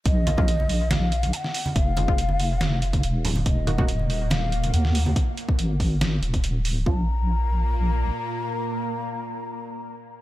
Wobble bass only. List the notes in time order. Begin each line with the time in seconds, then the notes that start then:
0.06 A#1
1.76 F1
3.03 D#1
3.46 D#1
4.73 D#2
5.59 G#1
6.23 D#1
6.67 D1
6.86 A#1